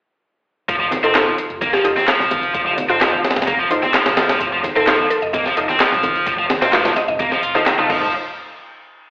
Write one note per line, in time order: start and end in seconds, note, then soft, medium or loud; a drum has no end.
0.69 0.97 F1 loud
0.69 0.74 F3 medium
0.69 kick loud
0.69 closed hi-hat soft
0.69 closed hi-hat medium
0.80 0.86 F3 loud
0.91 snare soft
0.91 closed hi-hat medium
0.91 high conga loud
1.03 1.32 F1 loud
1.03 1.13 C4 medium
1.03 1.11 D#4 medium
1.03 1.11 F4 medium
1.03 1.11 A4 medium
1.03 1.11 C5 medium
1.03 closed hi-hat soft
1.14 1.26 F3 medium
1.14 1.22 D#4 medium
1.14 1.22 F4 medium
1.14 1.22 A4 medium
1.14 1.23 A4 medium
1.14 1.22 C5 medium
1.14 snare loud
1.14 clap loud
1.14 closed hi-hat medium
1.14 closed hi-hat soft
1.27 1.32 F3 medium
1.27 high conga medium
1.38 closed hi-hat medium
1.50 1.78 F1 loud
1.50 closed hi-hat soft
1.61 1.71 A#3 medium
1.61 kick loud
1.61 closed hi-hat soft
1.61 closed hi-hat medium
1.61 high conga medium
1.73 1.82 F3 loud
1.73 1.81 G4 medium
1.73 snare medium
1.73 closed hi-hat soft
1.84 1.92 F1 loud
1.84 1.92 D#4 medium
1.84 1.92 F4 medium
1.84 1.92 G4 medium
1.84 1.92 A4 medium
1.84 1.92 D#5 loud
1.84 closed hi-hat medium
1.96 2.06 C4 medium
1.96 snare soft
1.96 closed hi-hat soft
1.96 high conga medium
2.08 2.53 F3 medium
2.08 snare loud
2.08 clap loud
2.08 closed hi-hat soft
2.08 closed hi-hat medium
2.19 2.48 C2 medium
2.19 snare soft
2.19 low conga medium
2.31 kick loud
2.31 closed hi-hat medium
2.31 high conga medium
2.43 closed hi-hat soft
2.54 2.83 F1 loud
2.54 2.60 F3 medium
2.54 kick loud
2.54 closed hi-hat soft
2.54 closed hi-hat medium
2.66 2.72 F3 loud
2.78 closed hi-hat medium
2.78 high conga medium
2.89 3.18 F1 loud
2.89 2.98 C4 medium
2.89 2.97 D#4 medium
2.89 2.97 F4 medium
2.89 2.97 A4 medium
2.89 2.97 C5 medium
2.89 closed hi-hat soft
3.01 3.12 F3 medium
3.01 3.08 D#4 medium
3.01 3.08 F4 medium
3.01 3.09 F4 medium
3.01 3.08 A4 medium
3.01 3.08 C5 loud
3.01 snare loud
3.01 clap loud
3.01 closed hi-hat soft
3.01 closed hi-hat medium
3.13 3.18 F3 medium
3.13 high conga medium
3.25 snare medium
3.25 closed hi-hat medium
3.31 snare medium
3.31 closed hi-hat medium
3.36 3.64 F1 loud
3.36 snare medium
3.36 closed hi-hat medium
3.36 closed hi-hat soft
3.36 low conga medium
3.42 snare medium
3.42 closed hi-hat medium
3.47 3.57 A#3 medium
3.47 kick loud
3.47 closed hi-hat medium
3.47 closed hi-hat soft
3.47 high conga medium
3.59 3.68 F3 loud
3.59 closed hi-hat soft
3.70 3.79 F1 loud
3.70 3.83 D#4 medium
3.70 3.83 F4 medium
3.70 3.83 A4 medium
3.70 3.83 C5 loud
3.70 closed hi-hat medium
3.83 3.92 C4 medium
3.83 snare soft
3.83 closed hi-hat soft
3.83 high conga medium
3.93 4.39 F3 medium
3.93 snare loud
3.93 clap loud
3.93 closed hi-hat medium
3.93 closed hi-hat soft
4.06 4.34 C2 medium
4.06 snare loud
4.06 closed hi-hat medium
4.06 low conga medium
4.17 4.25 D#4 medium
4.17 4.25 F4 medium
4.17 4.25 A4 medium
4.17 4.25 C5 loud
4.17 snare loud
4.17 closed hi-hat medium
4.17 high conga loud
4.29 snare loud
4.29 closed hi-hat medium
4.29 closed hi-hat soft
4.29 low conga medium
4.40 4.69 F1 loud
4.40 4.46 F3 medium
4.40 kick loud
4.40 closed hi-hat medium
4.40 closed hi-hat soft
4.53 4.58 F3 loud
4.63 snare soft
4.63 closed hi-hat medium
4.63 high conga loud
4.75 5.04 F1 loud
4.75 4.85 C4 medium
4.75 4.83 D#4 medium
4.75 4.83 F4 medium
4.75 4.83 A4 medium
4.75 4.83 C5 medium
4.75 closed hi-hat soft
4.87 4.98 F3 medium
4.87 4.95 D#4 medium
4.87 4.95 F4 medium
4.87 4.95 A4 medium
4.87 4.95 C5 loud
4.87 snare loud
4.87 clap loud
4.87 closed hi-hat soft
4.87 closed hi-hat medium
4.99 5.05 F3 medium
4.99 high conga medium
5.10 5.20 A4 medium
5.10 closed hi-hat medium
5.22 5.51 F1 loud
5.22 5.29 D#5 medium
5.22 closed hi-hat soft
5.33 5.43 A#3 medium
5.33 5.41 D#5 medium
5.33 kick loud
5.33 closed hi-hat soft
5.33 closed hi-hat medium
5.33 high conga medium
5.45 5.54 F3 loud
5.45 snare medium
5.45 closed hi-hat soft
5.57 5.65 F1 loud
5.57 5.64 D#4 medium
5.57 5.64 F4 medium
5.57 5.64 A4 medium
5.57 5.64 D#5 loud
5.57 closed hi-hat medium
5.69 5.78 C4 medium
5.69 snare soft
5.69 closed hi-hat soft
5.69 high conga medium
5.80 6.25 F3 medium
5.80 snare loud
5.80 clap loud
5.80 closed hi-hat soft
5.80 closed hi-hat medium
5.92 6.20 C2 medium
5.92 snare soft
5.92 low conga medium
6.03 kick loud
6.03 closed hi-hat medium
6.03 high conga loud
6.16 closed hi-hat soft
6.26 6.55 F1 loud
6.26 6.33 F3 medium
6.26 kick loud
6.26 closed hi-hat medium
6.26 closed hi-hat soft
6.39 6.44 F3 loud
6.50 snare loud
6.50 closed hi-hat medium
6.50 high conga loud
6.62 6.90 F1 loud
6.62 6.71 C4 medium
6.62 6.69 D#4 medium
6.62 6.69 F4 medium
6.62 6.69 A4 medium
6.62 6.69 C5 medium
6.62 snare loud
6.62 closed hi-hat soft
6.62 closed hi-hat medium
6.73 6.84 F3 medium
6.73 6.80 D#4 medium
6.73 6.81 F4 medium
6.73 6.80 A4 medium
6.73 6.80 C5 medium
6.73 snare loud
6.73 clap loud
6.73 closed hi-hat medium
6.73 closed hi-hat soft
6.85 6.90 F3 medium
6.85 snare loud
6.85 closed hi-hat medium
6.85 high conga medium
6.96 7.04 D#5 medium
6.96 snare soft
6.96 closed hi-hat medium
7.08 7.37 F1 loud
7.08 7.16 D#5 medium
7.08 closed hi-hat soft
7.08 low conga medium
7.19 7.29 A#3 medium
7.19 kick loud
7.19 closed hi-hat medium
7.19 closed hi-hat soft
7.19 high conga medium
7.32 7.41 F3 loud
7.32 snare medium
7.32 closed hi-hat soft
7.43 7.71 F1 medium
7.43 7.54 F4 loud
7.43 closed hi-hat medium
7.55 7.65 F3 loud
7.55 7.62 D#4 loud
7.55 7.62 F4 medium
7.55 7.62 A4 medium
7.55 7.62 C5 loud
7.55 snare soft
7.55 closed hi-hat soft
7.55 high conga medium
7.66 7.72 D#3 medium
7.66 snare loud
7.66 clap loud
7.66 closed hi-hat soft
7.66 closed hi-hat medium
7.78 7.89 C2 loud
7.78 7.88 A3 medium
7.78 7.88 D#4 medium
7.78 7.88 F4 medium
7.78 7.88 A4 medium
7.78 7.89 D#5 loud
7.78 closed hi-hat soft
7.78 low conga medium
7.89 8.11 F1 medium
7.89 8.11 F3 medium
7.89 8.07 D#4 medium
7.89 8.07 F4 medium
7.89 8.07 A4 medium
7.89 8.07 C5 medium
7.89 kick loud
7.89 crash medium
7.89 high conga loud
8.02 low conga medium